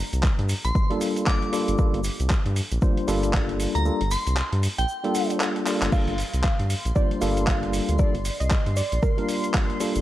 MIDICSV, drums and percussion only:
0, 0, Header, 1, 2, 480
1, 0, Start_track
1, 0, Key_signature, -2, "minor"
1, 0, Tempo, 517241
1, 1657, Time_signature, 4, 2, 24, 8
1, 9292, End_track
2, 0, Start_track
2, 0, Title_t, "Drums"
2, 120, Note_on_c, 9, 42, 65
2, 120, Note_on_c, 9, 82, 52
2, 213, Note_off_c, 9, 42, 0
2, 213, Note_off_c, 9, 82, 0
2, 213, Note_on_c, 9, 39, 108
2, 217, Note_on_c, 9, 36, 102
2, 221, Note_on_c, 9, 82, 37
2, 306, Note_off_c, 9, 39, 0
2, 310, Note_off_c, 9, 36, 0
2, 314, Note_off_c, 9, 82, 0
2, 361, Note_on_c, 9, 42, 57
2, 454, Note_off_c, 9, 42, 0
2, 455, Note_on_c, 9, 82, 86
2, 458, Note_on_c, 9, 46, 106
2, 548, Note_off_c, 9, 82, 0
2, 550, Note_off_c, 9, 46, 0
2, 597, Note_on_c, 9, 82, 52
2, 600, Note_on_c, 9, 42, 66
2, 689, Note_off_c, 9, 82, 0
2, 693, Note_off_c, 9, 42, 0
2, 697, Note_on_c, 9, 36, 115
2, 700, Note_on_c, 9, 82, 36
2, 790, Note_off_c, 9, 36, 0
2, 793, Note_off_c, 9, 82, 0
2, 840, Note_on_c, 9, 42, 37
2, 933, Note_off_c, 9, 42, 0
2, 937, Note_on_c, 9, 46, 104
2, 938, Note_on_c, 9, 82, 84
2, 1030, Note_off_c, 9, 46, 0
2, 1031, Note_off_c, 9, 82, 0
2, 1080, Note_on_c, 9, 42, 65
2, 1083, Note_on_c, 9, 82, 52
2, 1173, Note_off_c, 9, 42, 0
2, 1173, Note_on_c, 9, 39, 117
2, 1176, Note_off_c, 9, 82, 0
2, 1177, Note_on_c, 9, 36, 106
2, 1178, Note_on_c, 9, 82, 41
2, 1266, Note_off_c, 9, 39, 0
2, 1270, Note_off_c, 9, 36, 0
2, 1270, Note_off_c, 9, 82, 0
2, 1320, Note_on_c, 9, 42, 36
2, 1412, Note_off_c, 9, 42, 0
2, 1417, Note_on_c, 9, 46, 103
2, 1425, Note_on_c, 9, 82, 90
2, 1510, Note_off_c, 9, 46, 0
2, 1518, Note_off_c, 9, 82, 0
2, 1557, Note_on_c, 9, 82, 49
2, 1560, Note_on_c, 9, 42, 65
2, 1650, Note_off_c, 9, 82, 0
2, 1653, Note_off_c, 9, 42, 0
2, 1653, Note_on_c, 9, 82, 40
2, 1658, Note_on_c, 9, 36, 113
2, 1745, Note_off_c, 9, 82, 0
2, 1750, Note_off_c, 9, 36, 0
2, 1800, Note_on_c, 9, 42, 53
2, 1890, Note_on_c, 9, 82, 97
2, 1893, Note_off_c, 9, 42, 0
2, 1898, Note_on_c, 9, 46, 102
2, 1983, Note_off_c, 9, 82, 0
2, 1990, Note_off_c, 9, 46, 0
2, 2039, Note_on_c, 9, 82, 51
2, 2040, Note_on_c, 9, 42, 68
2, 2132, Note_off_c, 9, 82, 0
2, 2133, Note_off_c, 9, 42, 0
2, 2133, Note_on_c, 9, 39, 117
2, 2138, Note_on_c, 9, 36, 103
2, 2144, Note_on_c, 9, 82, 37
2, 2226, Note_off_c, 9, 39, 0
2, 2230, Note_off_c, 9, 36, 0
2, 2237, Note_off_c, 9, 82, 0
2, 2280, Note_on_c, 9, 42, 58
2, 2373, Note_off_c, 9, 42, 0
2, 2378, Note_on_c, 9, 46, 107
2, 2379, Note_on_c, 9, 82, 90
2, 2471, Note_off_c, 9, 46, 0
2, 2472, Note_off_c, 9, 82, 0
2, 2516, Note_on_c, 9, 82, 49
2, 2520, Note_on_c, 9, 42, 70
2, 2609, Note_off_c, 9, 82, 0
2, 2613, Note_off_c, 9, 42, 0
2, 2614, Note_on_c, 9, 82, 39
2, 2618, Note_on_c, 9, 36, 110
2, 2707, Note_off_c, 9, 82, 0
2, 2710, Note_off_c, 9, 36, 0
2, 2760, Note_on_c, 9, 42, 40
2, 2852, Note_off_c, 9, 42, 0
2, 2858, Note_on_c, 9, 46, 100
2, 2859, Note_on_c, 9, 82, 87
2, 2950, Note_off_c, 9, 46, 0
2, 2952, Note_off_c, 9, 82, 0
2, 3000, Note_on_c, 9, 42, 67
2, 3000, Note_on_c, 9, 82, 53
2, 3092, Note_off_c, 9, 82, 0
2, 3093, Note_off_c, 9, 42, 0
2, 3093, Note_on_c, 9, 39, 119
2, 3096, Note_on_c, 9, 82, 35
2, 3097, Note_on_c, 9, 36, 104
2, 3186, Note_off_c, 9, 39, 0
2, 3189, Note_off_c, 9, 82, 0
2, 3190, Note_off_c, 9, 36, 0
2, 3239, Note_on_c, 9, 42, 39
2, 3332, Note_off_c, 9, 42, 0
2, 3337, Note_on_c, 9, 46, 101
2, 3340, Note_on_c, 9, 82, 93
2, 3430, Note_off_c, 9, 46, 0
2, 3433, Note_off_c, 9, 82, 0
2, 3480, Note_on_c, 9, 42, 66
2, 3482, Note_on_c, 9, 82, 50
2, 3573, Note_off_c, 9, 42, 0
2, 3575, Note_off_c, 9, 82, 0
2, 3576, Note_on_c, 9, 82, 37
2, 3669, Note_off_c, 9, 82, 0
2, 3720, Note_on_c, 9, 42, 55
2, 3813, Note_off_c, 9, 42, 0
2, 3813, Note_on_c, 9, 82, 87
2, 3816, Note_on_c, 9, 46, 104
2, 3906, Note_off_c, 9, 82, 0
2, 3909, Note_off_c, 9, 46, 0
2, 3960, Note_on_c, 9, 42, 69
2, 3961, Note_on_c, 9, 82, 54
2, 4052, Note_off_c, 9, 42, 0
2, 4053, Note_on_c, 9, 39, 117
2, 4054, Note_off_c, 9, 82, 0
2, 4055, Note_on_c, 9, 82, 39
2, 4145, Note_off_c, 9, 39, 0
2, 4147, Note_off_c, 9, 82, 0
2, 4200, Note_on_c, 9, 42, 59
2, 4293, Note_off_c, 9, 42, 0
2, 4297, Note_on_c, 9, 46, 107
2, 4298, Note_on_c, 9, 82, 93
2, 4390, Note_off_c, 9, 46, 0
2, 4391, Note_off_c, 9, 82, 0
2, 4438, Note_on_c, 9, 82, 53
2, 4440, Note_on_c, 9, 42, 71
2, 4531, Note_off_c, 9, 82, 0
2, 4532, Note_on_c, 9, 82, 42
2, 4533, Note_off_c, 9, 42, 0
2, 4625, Note_off_c, 9, 82, 0
2, 4680, Note_on_c, 9, 42, 39
2, 4773, Note_off_c, 9, 42, 0
2, 4777, Note_on_c, 9, 46, 104
2, 4777, Note_on_c, 9, 82, 83
2, 4870, Note_off_c, 9, 46, 0
2, 4870, Note_off_c, 9, 82, 0
2, 4920, Note_on_c, 9, 42, 68
2, 4920, Note_on_c, 9, 82, 51
2, 5013, Note_off_c, 9, 42, 0
2, 5013, Note_off_c, 9, 82, 0
2, 5013, Note_on_c, 9, 39, 119
2, 5018, Note_on_c, 9, 82, 34
2, 5106, Note_off_c, 9, 39, 0
2, 5111, Note_off_c, 9, 82, 0
2, 5160, Note_on_c, 9, 42, 40
2, 5253, Note_off_c, 9, 42, 0
2, 5256, Note_on_c, 9, 82, 84
2, 5258, Note_on_c, 9, 39, 86
2, 5258, Note_on_c, 9, 46, 102
2, 5348, Note_off_c, 9, 82, 0
2, 5350, Note_off_c, 9, 39, 0
2, 5350, Note_off_c, 9, 46, 0
2, 5398, Note_on_c, 9, 82, 57
2, 5400, Note_on_c, 9, 39, 96
2, 5400, Note_on_c, 9, 42, 66
2, 5491, Note_off_c, 9, 82, 0
2, 5493, Note_off_c, 9, 39, 0
2, 5493, Note_off_c, 9, 42, 0
2, 5497, Note_on_c, 9, 82, 40
2, 5498, Note_on_c, 9, 36, 119
2, 5498, Note_on_c, 9, 49, 77
2, 5590, Note_off_c, 9, 36, 0
2, 5590, Note_off_c, 9, 82, 0
2, 5591, Note_off_c, 9, 49, 0
2, 5640, Note_on_c, 9, 42, 54
2, 5732, Note_off_c, 9, 42, 0
2, 5737, Note_on_c, 9, 46, 104
2, 5752, Note_on_c, 9, 82, 100
2, 5830, Note_off_c, 9, 46, 0
2, 5844, Note_off_c, 9, 82, 0
2, 5880, Note_on_c, 9, 42, 70
2, 5881, Note_on_c, 9, 82, 53
2, 5973, Note_off_c, 9, 42, 0
2, 5974, Note_off_c, 9, 82, 0
2, 5974, Note_on_c, 9, 39, 121
2, 5978, Note_on_c, 9, 36, 106
2, 5984, Note_on_c, 9, 82, 43
2, 6066, Note_off_c, 9, 39, 0
2, 6070, Note_off_c, 9, 36, 0
2, 6077, Note_off_c, 9, 82, 0
2, 6121, Note_on_c, 9, 42, 57
2, 6214, Note_off_c, 9, 42, 0
2, 6218, Note_on_c, 9, 46, 109
2, 6218, Note_on_c, 9, 82, 85
2, 6310, Note_off_c, 9, 46, 0
2, 6311, Note_off_c, 9, 82, 0
2, 6360, Note_on_c, 9, 42, 71
2, 6366, Note_on_c, 9, 82, 48
2, 6453, Note_off_c, 9, 42, 0
2, 6456, Note_off_c, 9, 82, 0
2, 6456, Note_on_c, 9, 82, 41
2, 6458, Note_on_c, 9, 36, 115
2, 6548, Note_off_c, 9, 82, 0
2, 6550, Note_off_c, 9, 36, 0
2, 6600, Note_on_c, 9, 42, 40
2, 6693, Note_off_c, 9, 42, 0
2, 6696, Note_on_c, 9, 82, 85
2, 6697, Note_on_c, 9, 46, 104
2, 6789, Note_off_c, 9, 82, 0
2, 6790, Note_off_c, 9, 46, 0
2, 6840, Note_on_c, 9, 42, 67
2, 6842, Note_on_c, 9, 82, 49
2, 6933, Note_off_c, 9, 42, 0
2, 6933, Note_on_c, 9, 39, 126
2, 6934, Note_off_c, 9, 82, 0
2, 6938, Note_on_c, 9, 36, 107
2, 6939, Note_on_c, 9, 82, 38
2, 7026, Note_off_c, 9, 39, 0
2, 7031, Note_off_c, 9, 36, 0
2, 7032, Note_off_c, 9, 82, 0
2, 7080, Note_on_c, 9, 42, 39
2, 7173, Note_off_c, 9, 42, 0
2, 7178, Note_on_c, 9, 46, 103
2, 7179, Note_on_c, 9, 82, 89
2, 7271, Note_off_c, 9, 46, 0
2, 7271, Note_off_c, 9, 82, 0
2, 7318, Note_on_c, 9, 82, 52
2, 7320, Note_on_c, 9, 42, 68
2, 7411, Note_off_c, 9, 82, 0
2, 7411, Note_on_c, 9, 82, 42
2, 7413, Note_off_c, 9, 42, 0
2, 7418, Note_on_c, 9, 36, 119
2, 7504, Note_off_c, 9, 82, 0
2, 7511, Note_off_c, 9, 36, 0
2, 7561, Note_on_c, 9, 42, 53
2, 7653, Note_off_c, 9, 42, 0
2, 7657, Note_on_c, 9, 46, 111
2, 7658, Note_on_c, 9, 82, 94
2, 7750, Note_off_c, 9, 46, 0
2, 7751, Note_off_c, 9, 82, 0
2, 7800, Note_on_c, 9, 42, 67
2, 7805, Note_on_c, 9, 82, 58
2, 7893, Note_off_c, 9, 42, 0
2, 7893, Note_on_c, 9, 39, 122
2, 7898, Note_off_c, 9, 82, 0
2, 7898, Note_on_c, 9, 36, 109
2, 7898, Note_on_c, 9, 82, 43
2, 7986, Note_off_c, 9, 39, 0
2, 7991, Note_off_c, 9, 36, 0
2, 7991, Note_off_c, 9, 82, 0
2, 8040, Note_on_c, 9, 42, 56
2, 8133, Note_off_c, 9, 42, 0
2, 8134, Note_on_c, 9, 82, 98
2, 8137, Note_on_c, 9, 46, 110
2, 8227, Note_off_c, 9, 82, 0
2, 8230, Note_off_c, 9, 46, 0
2, 8279, Note_on_c, 9, 82, 49
2, 8280, Note_on_c, 9, 42, 67
2, 8372, Note_off_c, 9, 82, 0
2, 8373, Note_off_c, 9, 42, 0
2, 8378, Note_on_c, 9, 36, 122
2, 8378, Note_on_c, 9, 82, 39
2, 8470, Note_off_c, 9, 82, 0
2, 8471, Note_off_c, 9, 36, 0
2, 8521, Note_on_c, 9, 42, 39
2, 8613, Note_off_c, 9, 42, 0
2, 8618, Note_on_c, 9, 46, 113
2, 8620, Note_on_c, 9, 82, 96
2, 8711, Note_off_c, 9, 46, 0
2, 8713, Note_off_c, 9, 82, 0
2, 8759, Note_on_c, 9, 82, 53
2, 8760, Note_on_c, 9, 42, 68
2, 8852, Note_off_c, 9, 82, 0
2, 8853, Note_off_c, 9, 42, 0
2, 8853, Note_on_c, 9, 39, 127
2, 8858, Note_on_c, 9, 36, 113
2, 8861, Note_on_c, 9, 82, 43
2, 8946, Note_off_c, 9, 39, 0
2, 8951, Note_off_c, 9, 36, 0
2, 8954, Note_off_c, 9, 82, 0
2, 9000, Note_on_c, 9, 42, 38
2, 9093, Note_off_c, 9, 42, 0
2, 9097, Note_on_c, 9, 82, 99
2, 9098, Note_on_c, 9, 46, 112
2, 9190, Note_off_c, 9, 46, 0
2, 9190, Note_off_c, 9, 82, 0
2, 9234, Note_on_c, 9, 82, 60
2, 9240, Note_on_c, 9, 42, 67
2, 9292, Note_off_c, 9, 42, 0
2, 9292, Note_off_c, 9, 82, 0
2, 9292, End_track
0, 0, End_of_file